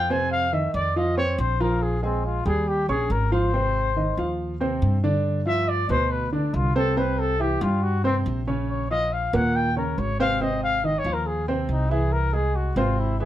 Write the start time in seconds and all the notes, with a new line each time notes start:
Already playing: F2 G5
0.10 C3 C4 C5 G#5
0.31 F5
0.53 D#3 D#4 D#5 E5
0.74 F2 D5
0.96 F3 F4 D#5 F5
1.17 C4 C5 C#5 C6
1.38 A#1 C5
1.60 F3 F4 A#4 F5
1.82 G#4
2.03 G#3 C4 G#4 G#5
2.25 F4
2.46 D#2 G3 G4 G#4 G5
2.68 G4
2.88 A#1 C#4 G#4 C#5 C#6
3.10 G#1 A#4
3.32 F3 F4 C5 F5
3.53 C3 C4 C5
3.96 D#3 D#4 D#5
4.17 D#2 F3 F4 F5
4.61 C3 C4 C5
4.82 G2
5.04 D3 D4 D5
5.46 F3 F4 E5 F5
5.69 D5
5.89 D2 B2 B3 B4 C5
6.11 B4
6.32 D3 D4 D5
6.54 C2 F4
6.75 C3 C4 A4 C5
6.97 C3 C4 B4 C5
7.19 A4
7.40 E3 E4 G4 E5
7.61 G2 G3 F4 G4 G5
7.83 F#4
8.04 C3 C4 C5
8.26 A#1
8.47 C#3 C#4 C#5
8.70 C#5
8.91 F3 F4 D#5 F5
9.13 F5
9.33 D#2 A#2 A#3 A#4 F#5
9.56 G5
9.76 C#3 C#4 A#4 C#5
9.98 G#1 C#5
10.20 C3 C4 C5 F5
10.41 C3 C4 C5 D#5
10.63 F5
10.84 D#3 D#4 D#5
10.99 C#5
11.04 D#2 F3 F4 F5
11.13 A#4
11.27 G#4
11.48 C3 C4 C5
11.69 C2 D#4
11.91 E3 E4 G#4 E5
12.12 A#4
12.33 G#3 G#4 G#5
12.56 F#4
12.76 G#1 C3 C4 F4 C5
12.99 E4
13.20 E3 E4 G#4 E5